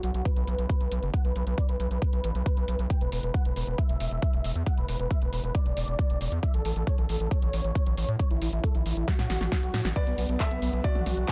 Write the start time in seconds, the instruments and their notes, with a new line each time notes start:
0.03 analog synth bass B1, supersaw synth F#4, closed hi-hat
0.14 analog synth bass B1, supersaw synth F#4, closed hi-hat
0.25 supersaw synth B4, kick, closed hi-hat
0.36 analog synth bass B1, closed hi-hat
0.47 analog synth bass B1, closed hi-hat
0.59 analog synth bass B1, closed hi-hat
0.70 kick, closed hi-hat
0.81 analog synth bass B1, closed hi-hat
0.92 analog synth bass B1, closed hi-hat
1.03 analog synth bass F#1, closed hi-hat
1.14 supersaw synth F#5, kick, closed hi-hat
1.25 analog synth bass B1, supersaw synth B4, closed hi-hat
1.36 analog synth bass B1, supersaw synth B4, closed hi-hat
1.47 analog synth bass B1, supersaw synth B4, closed hi-hat
1.58 supersaw synth D5, kick, closed hi-hat
1.69 analog synth bass B1, supersaw synth B4, closed hi-hat
1.80 analog synth bass B1, supersaw synth B4, closed hi-hat
1.91 analog synth bass B1, supersaw synth B4, closed hi-hat
2.02 supersaw synth B4, kick, closed hi-hat
2.13 analog synth bass B1, closed hi-hat
2.24 analog synth bass A1, closed hi-hat
2.35 analog synth bass B1, closed hi-hat
2.46 kick, closed hi-hat
2.57 analog synth bass B1, closed hi-hat
2.68 analog synth bass B1, closed hi-hat
2.79 analog synth bass B1, closed hi-hat
2.90 supersaw synth G5, kick, closed hi-hat
3.01 analog synth bass E1, supersaw synth B4, closed hi-hat
3.12 analog synth bass E1, supersaw synth B4, open hi-hat
3.23 analog synth bass E1, supersaw synth B4, closed hi-hat
3.34 supersaw synth F#5, kick, closed hi-hat
3.45 analog synth bass E1, supersaw synth B4, closed hi-hat
3.56 analog synth bass E1, supersaw synth B4, open hi-hat
3.67 analog synth bass E1, supersaw synth B4, closed hi-hat
3.78 supersaw synth E5, kick, closed hi-hat
3.89 analog synth bass E1, closed hi-hat
4.00 analog synth bass E1, open hi-hat
4.11 analog synth bass E1, closed hi-hat
4.22 kick, closed hi-hat
4.33 analog synth bass E1, closed hi-hat
4.44 analog synth bass E1, open hi-hat
4.55 analog synth bass E2, closed hi-hat
4.66 supersaw synth F#5, kick, closed hi-hat
4.78 analog synth bass E1, supersaw synth B4, closed hi-hat
4.89 analog synth bass E1, supersaw synth B4, open hi-hat
5.00 analog synth bass E1, supersaw synth B4, closed hi-hat
5.11 supersaw synth E5, kick, closed hi-hat
5.22 analog synth bass E1, supersaw synth B4, closed hi-hat
5.33 analog synth bass E1, supersaw synth B4, open hi-hat
5.44 analog synth bass E1, supersaw synth B4, closed hi-hat
5.55 supersaw synth D5, kick, closed hi-hat
5.66 analog synth bass E1, closed hi-hat
5.77 analog synth bass E1, open hi-hat
5.88 analog synth bass E1, closed hi-hat
5.99 kick, closed hi-hat
6.10 analog synth bass E1, closed hi-hat
6.21 analog synth bass E1, open hi-hat
6.32 analog synth bass E2, closed hi-hat
6.43 supersaw synth E5, kick, closed hi-hat
6.54 analog synth bass A1, supersaw synth A4, closed hi-hat
6.65 analog synth bass A1, supersaw synth A4, open hi-hat
6.76 analog synth bass A1, supersaw synth A4, closed hi-hat
6.87 supersaw synth C#5, kick, closed hi-hat
6.98 analog synth bass A1, supersaw synth A4, closed hi-hat
7.09 analog synth bass A1, supersaw synth A4, open hi-hat
7.20 analog synth bass A1, supersaw synth A4, closed hi-hat
7.31 supersaw synth C#5, kick, closed hi-hat
7.42 analog synth bass A1, closed hi-hat
7.53 analog synth bass A1, open hi-hat
7.64 analog synth bass A1, closed hi-hat
7.75 kick, closed hi-hat
7.86 analog synth bass A1, closed hi-hat
7.97 analog synth bass A1, open hi-hat
8.08 analog synth bass A2, closed hi-hat
8.19 supersaw synth C#5, kick, closed hi-hat
8.31 analog synth bass A1, supersaw synth E4, closed hi-hat
8.42 analog synth bass A1, supersaw synth E4, open hi-hat
8.53 analog synth bass A1, supersaw synth E4, closed hi-hat
8.64 supersaw synth A4, kick, closed hi-hat
8.75 analog synth bass A1, supersaw synth E4, closed hi-hat
8.86 analog synth bass A1, supersaw synth E4, open hi-hat
8.97 analog synth bass A1, supersaw synth E4
9.08 supersaw synth F#4, kick, snare, closed hi-hat
9.19 analog synth bass A2, snare, closed hi-hat
9.30 analog synth bass A1, snare, open hi-hat
9.41 analog synth bass A1, snare, closed hi-hat
9.52 kick, snare, closed hi-hat
9.63 analog synth bass B1, closed hi-hat
9.74 analog synth bass A2, snare, open hi-hat
9.85 analog synth bass A1, snare, closed hi-hat
9.96 supersaw synth B4, grand piano D5, kick, closed hi-hat
10.07 analog synth bass B1, supersaw synth B3, closed hi-hat
10.18 analog synth bass B1, supersaw synth B3, open hi-hat
10.29 analog synth bass B1, supersaw synth B3, closed hi-hat
10.40 supersaw synth A4, grand piano E5, kick, clap, closed hi-hat
10.51 analog synth bass B1, supersaw synth B3, closed hi-hat
10.62 analog synth bass B1, supersaw synth B3, open hi-hat
10.73 analog synth bass B1, supersaw synth B3, closed hi-hat
10.84 supersaw synth F#4, grand piano D5, kick, closed hi-hat
10.95 analog synth bass B1, closed hi-hat, mid tom
11.06 analog synth bass B1, open hi-hat, mid tom
11.17 analog synth bass B1
11.28 kick, clap, closed hi-hat